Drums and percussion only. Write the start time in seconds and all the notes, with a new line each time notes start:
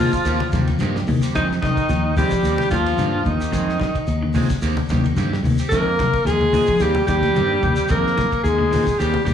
0.12 kick, shekere
0.25 ride bell, shekere
0.40 high conga
0.52 kick, snare, ride bell, low conga, shekere
0.67 snare, ride bell, high conga, shekere
0.79 snare, ride bell, high conga, shekere
0.96 snare
1.07 open hi-hat, high conga, low conga, shekere
1.22 snare, ride bell, shekere
1.35 kick, ride bell, low conga, shekere
1.52 snare
1.63 kick, snare, ride bell, high conga, shekere
1.76 kick, snare, ride bell, shekere
1.89 snare, ride bell, shekere
2.17 open hi-hat, high conga, low conga, shekere
2.31 kick, shekere
2.44 ride bell, shekere
2.58 snare, high conga
2.71 kick, snare, ride bell, low conga, shekere
2.86 snare, ride bell, shekere
2.98 snare, ride bell, high conga, shekere
3.25 kick, ride bell, high conga, low conga, shekere
3.41 shekere
3.52 kick, ride bell, low conga, shekere
3.69 snare
3.80 kick, snare, ride bell, high conga, shekere
3.95 kick, ride bell, shekere
4.07 ride bell, shekere
4.34 open hi-hat, high conga, low conga, shekere
4.50 kick, snare, shekere
4.62 ride bell, shekere
4.77 high conga
4.89 kick, snare, ride bell, low conga, shekere
5.04 ride bell, high conga, shekere
5.17 snare, ride bell, high conga, shekere
5.33 snare
5.44 open hi-hat, high conga, low conga, shekere
5.58 ride bell, shekere
5.71 kick, ride bell, shekere
5.99 kick, snare, ride bell, high conga, shekere
6.13 kick, ride bell, shekere
6.27 snare, ride bell, shekere
6.41 high conga
6.53 open hi-hat, high conga, low conga, shekere
6.67 kick, shekere
6.79 ride bell, shekere
6.95 high conga
7.07 kick, snare, ride bell, shekere
7.22 snare, ride bell, high conga, shekere
7.35 ride bell, high conga, shekere
7.63 kick, ride bell, high conga, low conga, shekere
7.76 shekere
7.88 kick, ride bell, low conga, shekere
8.06 snare
8.18 kick, snare, ride bell, high conga, shekere
8.32 kick, ride bell, shekere
8.45 ride bell, shekere
8.60 high conga
8.73 open hi-hat, high conga, low conga, shekere
8.87 kick, shekere
9.00 ride bell, shekere
9.14 high conga
9.26 kick, snare, ride bell, low conga, shekere